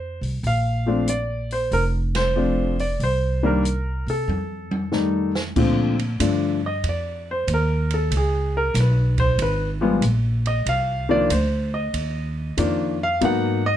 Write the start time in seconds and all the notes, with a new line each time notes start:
Already playing: F2 C5
0.21 C2, open hi-hat
0.43 A#1 F5, kick, open hi-hat
0.86 F3 A3 C4 D4
1.08 D5, closed hi-hat
1.51 C5, open hi-hat
1.71 F1 A#4, kick, open hi-hat
2.15 C5, snare, ride
2.36 F3 A3 C4 D4
2.79 D5, open hi-hat
3.00 C2 C5, kick, open hi-hat
3.43 D#3 G3 A#3 D4 A#4
3.65 closed hi-hat
4.07 C3 A4, open hi-hat
4.28 F2, high tom
4.71 high tom
4.92 D#3 G3 A3 D#4, snare
5.35 snare
5.56 A#2 D3 F3 A3 C4, kick, crash
5.99 ride
6.20 G2 D3 F3 A3 D4, kick, hi-hat pedal, ride
6.66 D#5
6.83 F2, kick, ride
6.89 D5
7.31 C5
7.47 D#2, kick, hi-hat pedal, ride
7.54 A#4
7.91 A4, ride
8.11 C#2, kick, ride
8.17 G#4
8.57 A#4
8.74 B1, kick, snare, hi-hat pedal, ride
8.80 B4
9.18 C5, kick, ride
9.38 G#1 B4, kick, ride
9.81 F3 G3 G#3 B3
10.02 A#1, kick, hi-hat pedal, ride
10.46 D#5, ride
10.66 C2 F5, kick, ride
11.09 D#3 F3 A#3 D4 D5
11.30 D2 C5, kick, hi-hat pedal, ride
11.74 D#5
11.93 D#2, kick, ride
12.57 F2 D#3 F3 A#3 D4, kick, hi-hat pedal, ride
13.03 F5
13.21 G#2 F#3 A#3 B3 D#4 F#5, kick, ride
13.66 D#5